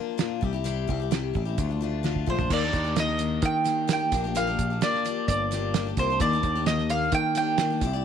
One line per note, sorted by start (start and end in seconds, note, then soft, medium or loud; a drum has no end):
0.00 0.17 F3 medium
0.00 0.18 A#3 medium
0.00 0.18 D4 medium
0.00 0.19 F4 medium
0.18 0.42 A#2 medium
0.18 0.40 F3 medium
0.18 0.42 A#3 medium
0.18 0.42 D4 medium
0.18 0.43 F4 medium
0.18 snare medium
0.18 closed hi-hat medium
0.41 0.86 C2 medium
0.41 0.53 G3 medium
0.41 0.54 C4 medium
0.41 0.53 E4 medium
0.41 0.52 G4 medium
0.41 kick medium
0.53 0.64 C4 medium
0.53 0.64 E4 medium
0.53 0.65 G4 medium
0.64 0.88 C3 medium
0.64 0.86 G3 medium
0.64 0.87 C4 medium
0.64 0.89 E4 medium
0.64 0.89 G4 medium
0.64 closed hi-hat medium
0.88 1.32 C2 medium
0.88 1.00 G3 medium
0.88 1.00 C4 medium
0.88 1.01 E4 medium
0.88 0.98 G4 medium
0.88 kick medium
1.00 1.11 C4 soft
1.00 1.11 E4 soft
1.00 1.11 G4 medium
1.11 1.35 C3 medium
1.11 1.32 G3 medium
1.11 1.33 C4 medium
1.11 1.35 E4 medium
1.11 1.36 G4 medium
1.11 snare loud
1.11 closed hi-hat medium
1.34 1.57 A1 medium
1.34 1.46 G3 medium
1.34 1.47 C4 medium
1.34 1.46 E4 medium
1.34 1.44 G4 medium
1.34 kick medium
1.45 1.58 C4 soft
1.45 1.58 E4 soft
1.45 1.58 G4 medium
1.58 2.24 D2 medium
1.58 1.70 D3 medium
1.58 1.70 F3 medium
1.58 1.70 A3 medium
1.58 1.69 D4 medium
1.58 1.68 F4 medium
1.58 kick medium
1.58 closed hi-hat medium
1.69 1.81 A3 soft
1.69 1.82 D4 soft
1.69 1.81 F4 soft
1.81 2.03 F3 medium
1.81 2.03 A3 medium
1.81 2.03 D4 medium
1.81 2.04 F4 medium
2.03 2.27 D3 medium
2.03 2.25 F3 medium
2.03 2.26 A3 medium
2.03 2.27 D4 medium
2.03 2.28 F4 medium
2.03 snare medium
2.16 kick medium
2.26 2.49 A#1 medium
2.26 2.39 F3 medium
2.26 2.39 A3 medium
2.26 2.38 D4 medium
2.26 2.37 F4 medium
2.26 2.53 C5 medium
2.26 kick medium
2.38 2.51 A3 soft
2.38 2.51 D4 medium
2.38 2.50 F4 medium
2.38 floor tom medium
2.50 2.72 D#2 medium
2.50 2.62 D#3 medium
2.50 2.63 A#3 medium
2.50 2.62 D4 medium
2.50 2.60 G4 medium
2.50 2.99 D5 medium
2.50 kick medium
2.50 crash loud
2.61 2.86 A#3 soft
2.61 2.85 D4 soft
2.61 2.83 G4 medium
2.73 3.39 D#2 medium
2.73 kick medium
2.73 closed hi-hat medium
2.84 2.95 A#3 soft
2.84 2.97 D4 soft
2.84 2.96 G4 soft
2.96 3.17 D#3 medium
2.96 3.18 A#3 medium
2.96 3.19 D4 medium
2.96 3.20 G4 medium
2.96 3.46 D#5 medium
2.96 snare loud
2.96 closed hi-hat medium
3.08 snare soft
3.18 3.63 D#3 medium
3.18 3.65 A#3 medium
3.18 3.65 D4 medium
3.18 3.66 G4 medium
3.18 closed hi-hat medium
3.42 4.13 D#3 medium
3.42 3.92 G5 medium
3.42 kick loud
3.42 closed hi-hat medium
3.64 3.86 D#3 medium
3.64 3.87 A#3 medium
3.64 3.88 D4 medium
3.64 3.88 G4 medium
3.64 snare soft
3.64 closed hi-hat medium
3.88 4.00 D#3 medium
3.88 4.00 A#3 medium
3.88 3.99 D4 medium
3.88 3.98 G4 medium
3.88 snare loud
3.88 closed hi-hat medium
3.93 4.36 G5 medium
3.99 4.11 A#3 soft
3.99 4.12 D4 soft
3.99 4.12 G4 soft
4.12 4.55 A#1 medium
4.12 4.24 F3 medium
4.12 4.24 A#3 medium
4.12 4.24 D4 medium
4.12 4.23 G4 medium
4.12 kick loud
4.12 closed hi-hat medium
4.24 4.35 A#3 soft
4.24 4.35 D4 medium
4.24 4.35 G4 medium
4.35 4.47 A#2 medium
4.35 4.47 F3 medium
4.35 4.47 A#3 medium
4.35 4.47 D4 medium
4.35 4.46 G4 medium
4.35 4.84 F5 medium
4.35 closed hi-hat medium
4.47 4.72 A#3 soft
4.47 4.70 D4 medium
4.47 4.69 G4 medium
4.59 4.80 A#1 medium
4.59 kick medium
4.59 closed hi-hat medium
4.70 4.81 A#3 soft
4.70 4.82 D4 soft
4.70 4.82 G4 soft
4.81 5.04 A#2 medium
4.81 5.03 F3 medium
4.81 5.05 A#3 medium
4.81 5.05 D4 medium
4.81 5.06 G4 medium
4.81 5.25 D5 medium
4.81 snare loud
4.81 closed hi-hat medium
4.95 snare soft
5.05 5.50 F3 medium
5.05 5.51 A#3 medium
5.05 5.53 D4 medium
5.05 5.54 G4 medium
5.05 closed hi-hat medium
5.28 5.93 G1 medium
5.28 5.93 D5 medium
5.28 kick loud
5.28 closed hi-hat medium
5.51 5.74 F3 medium
5.51 5.75 A#3 medium
5.51 5.75 D4 medium
5.51 5.75 G4 medium
5.51 snare soft
5.51 closed hi-hat medium
5.74 5.86 A#2 medium
5.74 5.86 F3 medium
5.74 5.86 A#3 medium
5.74 5.87 D4 medium
5.74 5.85 G4 medium
5.74 snare loud
5.74 closed hi-hat medium
5.87 5.98 A#3 soft
5.87 5.98 D4 soft
5.87 5.98 G4 soft
5.97 6.19 C2 medium
5.97 6.09 F3 medium
5.97 6.10 A#3 medium
5.97 6.10 D4 medium
5.97 6.09 G4 medium
5.97 6.21 C5 medium
5.97 kick medium
5.97 closed hi-hat medium
6.10 6.21 A#3 soft
6.10 6.21 D4 medium
6.10 6.21 G4 medium
6.20 6.42 D#2 loud
6.20 6.32 D#3 medium
6.20 6.32 A#3 medium
6.20 6.33 D4 medium
6.20 6.32 G4 medium
6.20 6.64 D5 loud
6.20 kick loud
6.20 closed hi-hat medium
6.33 6.57 A#3 soft
6.33 6.56 D4 medium
6.33 6.54 G4 medium
6.43 7.08 D#2 medium
6.43 kick medium
6.43 closed hi-hat medium
6.55 6.67 A#3 soft
6.55 6.67 D4 soft
6.55 6.67 G4 medium
6.66 6.78 D#3 medium
6.66 6.79 A#3 medium
6.66 6.79 D4 medium
6.66 6.78 G4 medium
6.66 6.90 D#5 medium
6.66 snare loud
6.66 closed hi-hat medium
6.78 6.90 A#3 soft
6.78 6.90 D4 soft
6.78 6.90 G4 soft
6.78 snare soft
6.90 7.34 D#3 medium
6.90 7.35 A#3 medium
6.90 7.36 D4 medium
6.90 7.38 G4 medium
6.90 7.14 F5 medium
6.90 closed hi-hat medium
7.12 7.83 D#3 medium
7.12 7.36 G5 loud
7.12 kick loud
7.12 closed hi-hat medium
7.35 7.57 D#3 medium
7.35 7.58 A#3 medium
7.35 7.59 D4 medium
7.35 7.60 G4 medium
7.35 8.02 G5 loud
7.35 snare soft
7.35 closed hi-hat medium
7.58 7.70 D#3 medium
7.58 7.70 A#3 medium
7.58 7.71 D4 medium
7.58 7.69 G4 medium
7.58 snare loud
7.58 closed hi-hat medium
7.70 7.83 A#3 soft
7.70 7.83 D4 soft
7.70 7.82 G4 soft
7.81 8.05 C2 medium
7.81 7.93 C4 medium
7.81 7.94 E4 medium
7.81 7.94 G4 medium
7.81 7.92 D5 medium
7.81 kick loud
7.81 closed hi-hat medium
7.93 8.05 E4 soft
7.93 8.05 G4 medium
7.93 8.05 D5 medium